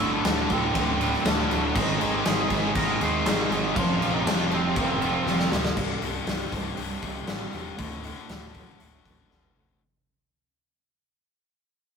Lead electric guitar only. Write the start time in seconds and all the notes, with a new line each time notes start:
Already playing: E4 E5
0.13 D4 D5
0.52 C4 C5
0.76 C4 C5
1.25 D4 D5
1.75 D#4 D#5
2.13 G4 G5
2.27 G#4 G#5
2.76 A#4 A#5
3.01 C5 C6
3.76 F4 F5
4.14 D#4 D#5
4.25 D4 D5
4.53 C4 C5
4.76 C4 C5